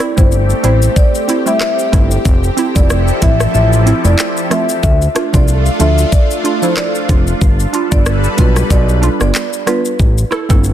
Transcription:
Already playing: A3 C4 G4
0.00 E4, cross-stick
0.17 G1 G3 A3 C4 E4 C5, kick, shaker
0.32 shaker
0.50 shaker
0.63 A1 G3 A3 C4 E4 C5, closed hi-hat, shaker
0.82 shaker
0.96 D5, kick, shaker
1.15 shaker
1.28 C4 E4, closed hi-hat, shaker
1.46 G3 A3 C4 E4 E5, shaker
1.61 cross-stick, clap, shaker
1.79 shaker
1.92 G1 G3 A3 C4 E4, kick, closed hi-hat, shaker
2.11 shaker
2.25 F1 F3 E4 A4, kick, shaker
2.44 shaker
2.57 C4 E4, closed hi-hat, shaker
2.75 F1 F3 A3 C4 E4 D5, kick, shaker
2.90 cross-stick, shaker
3.08 shaker
3.21 A1 F3 A3 C4 E4 E5, kick, closed hi-hat, shaker
3.40 cross-stick, shaker
3.54 A1 E5, shaker
3.73 shaker
3.86 C4 E4, closed hi-hat, shaker
4.04 F1 F3 A3 C4 E4 D5, shaker
4.19 clap, shaker
4.37 shaker
4.50 F3 A3 C4 F4 E5, cross-stick, closed hi-hat, shaker
4.69 shaker
4.83 D2 A3 D4 F4 E5, kick, shaker
5.02 shaker
5.15 D4 F4, cross-stick, closed hi-hat, shaker
5.33 C2 F3 A3 D4 F4 D5, kick, shaker
5.48 shaker
5.66 shaker
5.79 D2 F3 A3 D4 F4 E5, closed hi-hat, shaker
5.98 shaker
6.12 D5, kick, shaker
6.31 shaker
6.44 D4 F4, closed hi-hat, shaker
6.62 F3 A3 D4 E4 C5, shaker
6.77 D5, cross-stick, clap, shaker
6.95 shaker
7.08 F1 F3 A3 D4 F4, kick, closed hi-hat, shaker
7.27 shaker
7.41 G1 G3 A4 B4, kick, shaker
7.60 shaker
7.73 D4 F4, closed hi-hat, shaker
7.91 G1 G3 B3 D4 F4 D5, kick, shaker
8.06 cross-stick, shaker
8.24 shaker
8.37 B1 G3 B3 D4 F4 B4, kick, closed hi-hat, shaker
8.56 cross-stick, shaker
8.70 B1 D5, kick, shaker
8.89 shaker
9.02 D4 F4, closed hi-hat, shaker
9.20 G1 G3 B3 D4 F4 D5, cross-stick, shaker
9.35 clap, shaker
9.53 shaker
9.66 G3 B3 D4 F4 B4, cross-stick, closed hi-hat, shaker
9.85 shaker
9.99 A1, kick, shaker
10.18 shaker
10.31 E4 A4, cross-stick, shaker
10.49 G1 A3 C4 E4 A4, kick, shaker
10.64 shaker

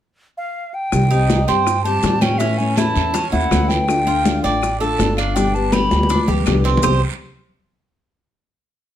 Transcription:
0.37 F5
0.74 G5
0.92 C2 C3 D#3 G3 C4 G4, high bongo, high conga, long guiro, claves, maracas
1.11 G3 C4 D#4 G4, high conga, maracas
1.30 C3 D#3 G3 C4 G4, high bongo, high conga, short guiro, maracas
1.47 G2 G3 C4 G4 C5 G5, high conga, short guiro, maracas
1.66 muted nylon-string guitar stroke, high bongo, high conga, long guiro, claves, maracas
1.84 G3 C4 G4 A5, high conga, maracas
2.03 A2 C3 D#3 G3 C4 G4, high bongo, low bongo, high conga, short guiro, maracas
2.21 C#4 G5, high conga, short guiro, claves, maracas
2.38 E3 A3 C#4 E4 E5, high bongo, high conga, long guiro, maracas
2.58 A3 C#4 E4 G#5, high conga, maracas
2.76 E3 A3 C#4 E4 A5, high bongo, high conga, short guiro, claves, maracas
2.95 E2 A3 C#4 E4, high bongo, high conga, short guiro, maracas
3.14 C#4, muted nylon-string guitar stroke, high bongo, high conga, long guiro, maracas
3.32 D#2 A3 C#4 E4 F#5, high bongo, high conga, maracas
3.50 D2 E3 A3 C#4 E4, high bongo, low bongo, high conga, short guiro, claves, maracas
3.68 G5, high bongo, high conga, short guiro, maracas
3.88 D3 A3 D4 F4, high bongo, high conga, long guiro, claves, maracas
4.07 A3 D4 F4, high conga, maracas
4.25 D3 A3 D4 F4, high bongo, high conga, short guiro, maracas
4.43 A1 A3 F4 D5 G5, high conga, short guiro, maracas
4.62 muted nylon-string guitar stroke, high bongo, high conga, long guiro, claves, maracas
4.80 A3 D4 F4 A4 A5, high conga, maracas
4.99 G1 D3 A3 D4 F4, high bongo, low bongo, high conga, short guiro, maracas
5.17 D4 F5, short guiro, claves, maracas
5.35 B2 D3 G3 B3 D4 G4 G5, high bongo, high conga, long guiro, maracas
5.54 G3 B3 G4 A5, high conga, maracas
5.72 B2 D3 G3 B3 G4 B5, high bongo, high conga, short guiro, claves, maracas
5.91 D2 G3 B3 G4, high bongo, high conga, short guiro, maracas
6.03 high conga
6.09 D4, muted nylon-string guitar stroke, high bongo, long guiro, maracas
6.16 high conga
6.28 D2 G3 B3 G4, high bongo, low conga, maracas
6.40 low conga
6.46 C2 B2 D3 G3 B3 G4, high bongo, low bongo, short guiro, claves, maracas
6.53 low conga
6.64 C4, high bongo, short guiro, maracas
6.77 low conga
6.83 C2 C3 D#3 G3 C4 G4 C5 C6, low bongo, low conga, long guiro, claves, maracas

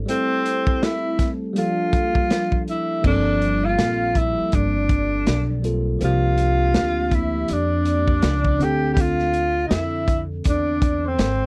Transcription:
0.06 G3 A3 C4 E4 C5, closed hi-hat
0.11 A4
0.46 closed hi-hat
0.67 kick
0.82 E4 E5, snare, closed hi-hat
1.19 kick, snare, closed hi-hat
1.53 F3 G3 A#3 D4 F5, closed hi-hat
1.58 F4 A4
1.93 kick, closed hi-hat
2.15 kick
2.30 snare, closed hi-hat
2.52 kick
2.68 E4 E5, closed hi-hat
3.02 G1 G3 A#3 C4 D5, kick, crash
3.06 F3 D4 A4
3.42 closed hi-hat
3.64 F4 F5
3.78 A#1, snare, closed hi-hat
4.15 E4 E5, kick, closed hi-hat
4.37 muted upright bass stroke
4.52 G1 D4 D5, kick, closed hi-hat
4.89 kick, closed hi-hat
5.27 B1, snare, closed hi-hat
5.62 G3 A#3 C4 F4 A4, closed hi-hat
5.99 C2 F3 A#3 C4 D4, closed hi-hat
6.03 F4 G4 F5
6.37 closed hi-hat
6.74 D2, snare, closed hi-hat
7.11 E4 E5, kick, closed hi-hat
7.48 F2 D5, closed hi-hat
7.53 D4
7.85 closed hi-hat
8.08 kick
8.22 C#2, snare, closed hi-hat
8.45 kick
8.58 D2 D3 C4 D4 G5, closed hi-hat
8.63 G4 A4
8.91 G4 G5
8.97 F4 F5, kick, closed hi-hat
9.19 snare
9.33 closed hi-hat
9.65 D#4 D#5
9.71 F2 E4 E5, snare, closed hi-hat
10.08 kick, closed hi-hat
10.44 E2 D5, kick, closed hi-hat
10.49 D4
10.82 kick, closed hi-hat
11.05 C4 C5
11.18 G#1, snare, closed hi-hat

